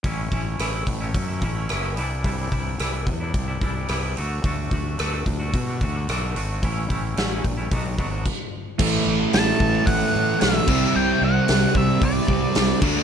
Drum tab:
CC |--------|--------|--------|------x-|
HH |oooooooo|oooooooo|oooooooo|oooooo--|
SD |--r---r-|--r---r-|--r---r-|--o-----|
BD |oo-ooo--|oo-ooo--|oo-ooo--|oo-oooo-|

CC |x------x|-------x|
HH |--o-o-o-|--o-o-o-|
SD |--o---o-|--o---o-|
BD |o--oo--o|---ooo-o|